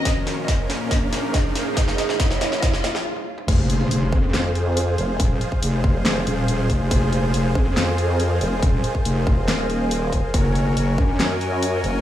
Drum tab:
CC |----------------|----------------|x---------------|----------------|
HH |x-x-x-x-x-x-x-x-|x-x-x-x-x-x-----|x-x-x---x-x-x-x-|x-x-x---x-x-x-x-|
CP |----------------|----------------|--------x-------|--------x-------|
SD |o-o-o-o-o-o-o-o-|oooooooooooo----|--------o-------|--------o-------|
T1 |----------------|------------oo--|----------------|----------------|
T2 |----------------|---------------o|----------------|----------------|
BD |o---o---o---o---|o---o---o-------|o-----o---------|o--o--o-------o-|

CC |----------------|----------------|----------------|
HH |x-x-x---x-x-x-x-|x-x-x---x-x-x-x-|x-x-x---x-x-x-x-|
CP |--------x-------|--------x-------|--------x-------|
SD |--------o-------|--------o-------|--------o-------|
T1 |----------------|----------------|----------------|
T2 |----------------|----------------|----------------|
BD |o-----o---------|o--o--o-------o-|o-----o---------|